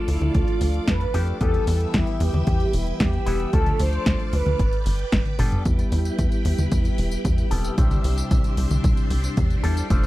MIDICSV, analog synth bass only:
0, 0, Header, 1, 2, 480
1, 0, Start_track
1, 0, Tempo, 530973
1, 1273, Time_signature, 4, 2, 24, 8
1, 9101, End_track
2, 0, Start_track
2, 0, Title_t, "Analog synth bass"
2, 0, Program_c, 0, 38
2, 72, Note_on_c, 0, 38, 87
2, 158, Note_off_c, 0, 38, 0
2, 192, Note_on_c, 0, 38, 86
2, 278, Note_off_c, 0, 38, 0
2, 313, Note_on_c, 0, 38, 80
2, 399, Note_off_c, 0, 38, 0
2, 552, Note_on_c, 0, 38, 86
2, 724, Note_off_c, 0, 38, 0
2, 793, Note_on_c, 0, 41, 101
2, 964, Note_off_c, 0, 41, 0
2, 1032, Note_on_c, 0, 41, 90
2, 1204, Note_off_c, 0, 41, 0
2, 1273, Note_on_c, 0, 40, 99
2, 1444, Note_off_c, 0, 40, 0
2, 1512, Note_on_c, 0, 40, 99
2, 1684, Note_off_c, 0, 40, 0
2, 1753, Note_on_c, 0, 40, 83
2, 1838, Note_off_c, 0, 40, 0
2, 1992, Note_on_c, 0, 40, 102
2, 2078, Note_off_c, 0, 40, 0
2, 2112, Note_on_c, 0, 40, 82
2, 2198, Note_off_c, 0, 40, 0
2, 2233, Note_on_c, 0, 40, 92
2, 2404, Note_off_c, 0, 40, 0
2, 2471, Note_on_c, 0, 28, 88
2, 2643, Note_off_c, 0, 28, 0
2, 2713, Note_on_c, 0, 40, 106
2, 2884, Note_off_c, 0, 40, 0
2, 2953, Note_on_c, 0, 28, 86
2, 3124, Note_off_c, 0, 28, 0
2, 3194, Note_on_c, 0, 38, 103
2, 3365, Note_off_c, 0, 38, 0
2, 3433, Note_on_c, 0, 38, 93
2, 3604, Note_off_c, 0, 38, 0
2, 3673, Note_on_c, 0, 38, 83
2, 3758, Note_off_c, 0, 38, 0
2, 3913, Note_on_c, 0, 38, 92
2, 3998, Note_off_c, 0, 38, 0
2, 4033, Note_on_c, 0, 38, 83
2, 4119, Note_off_c, 0, 38, 0
2, 4153, Note_on_c, 0, 31, 83
2, 4238, Note_off_c, 0, 31, 0
2, 4393, Note_on_c, 0, 31, 87
2, 4564, Note_off_c, 0, 31, 0
2, 4633, Note_on_c, 0, 31, 96
2, 4719, Note_off_c, 0, 31, 0
2, 4873, Note_on_c, 0, 31, 103
2, 5044, Note_off_c, 0, 31, 0
2, 5112, Note_on_c, 0, 40, 103
2, 5284, Note_off_c, 0, 40, 0
2, 5352, Note_on_c, 0, 40, 98
2, 5524, Note_off_c, 0, 40, 0
2, 5592, Note_on_c, 0, 40, 83
2, 5678, Note_off_c, 0, 40, 0
2, 5833, Note_on_c, 0, 40, 99
2, 5918, Note_off_c, 0, 40, 0
2, 5953, Note_on_c, 0, 40, 80
2, 6038, Note_off_c, 0, 40, 0
2, 6072, Note_on_c, 0, 40, 89
2, 6244, Note_off_c, 0, 40, 0
2, 6313, Note_on_c, 0, 28, 88
2, 6484, Note_off_c, 0, 28, 0
2, 6552, Note_on_c, 0, 40, 98
2, 6724, Note_off_c, 0, 40, 0
2, 6792, Note_on_c, 0, 28, 84
2, 6964, Note_off_c, 0, 28, 0
2, 7032, Note_on_c, 0, 36, 98
2, 7204, Note_off_c, 0, 36, 0
2, 7273, Note_on_c, 0, 36, 102
2, 7444, Note_off_c, 0, 36, 0
2, 7512, Note_on_c, 0, 36, 90
2, 7598, Note_off_c, 0, 36, 0
2, 7752, Note_on_c, 0, 36, 84
2, 7838, Note_off_c, 0, 36, 0
2, 7871, Note_on_c, 0, 36, 88
2, 7957, Note_off_c, 0, 36, 0
2, 7993, Note_on_c, 0, 36, 83
2, 8078, Note_off_c, 0, 36, 0
2, 8231, Note_on_c, 0, 36, 83
2, 8403, Note_off_c, 0, 36, 0
2, 8473, Note_on_c, 0, 40, 100
2, 8644, Note_off_c, 0, 40, 0
2, 8711, Note_on_c, 0, 40, 91
2, 8884, Note_off_c, 0, 40, 0
2, 8953, Note_on_c, 0, 29, 102
2, 9101, Note_off_c, 0, 29, 0
2, 9101, End_track
0, 0, End_of_file